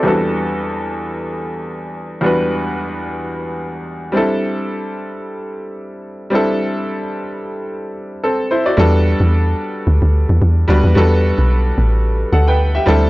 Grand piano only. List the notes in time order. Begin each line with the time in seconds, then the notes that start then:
Already playing: C4
0.03 E2 G3 B3 D4 F#4
0.08 A4
2.21 E2 G3 B3 D4 F#4
2.26 B4
4.12 G3 C4 D4 E4
4.17 A4
6.30 G3 C4 D4 E4
6.35 A4
8.24 C4 A4
8.51 E4 C5
8.66 F#4 D5
8.77 G3 B3 D4 F#4 A4
10.68 G3 B3 D4 F#4 B4
10.95 G3 B3 D4 F#4 A4
12.33 A4 F#5
12.48 B4 G5
12.75 G4 E5
12.86 G3 C4 D4 E4 A4